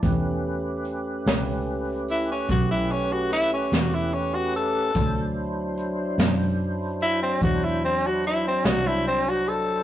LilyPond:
<<
  \new Staff \with { instrumentName = "Tenor saxophone" } { \time 12/8 \key a \mixolydian \tempo 4. = 49 r2 r8 e'16 cis'16 fis'16 e'16 cis'16 fis'16 e'16 cis'16 fis'16 e'16 cis'16 fis'16 a'8~ | a'8 r2 e'16 c'16 fis'16 e'16 c'16 fis'16 e'16 c'16 fis'16 e'16 c'16 fis'16 a'8 | }
  \new Staff \with { instrumentName = "Tonewheel organ" } { \time 12/8 \key a \mixolydian <a cis' g' b'>1. | <fis d' e' c''>1. | }
  \new Staff \with { instrumentName = "Fingered electric bass" } { \clef bass \time 12/8 \key a \mixolydian e,4. cis,4. b,,4. e,4. | d,4. fis,4. e,4. c,4. | }
  \new DrumStaff \with { instrumentName = "Drums" } \drummode { \time 12/8 <hh bd>4 hh8 <hh sn>4 hh8 <hh bd>4 <hh sn>8 <hh sn>4 hh8 | <hh bd>4 hh8 <hh sn>4 hh8 <hh bd>4 hh8 <hh sn>4 hh8 | }
>>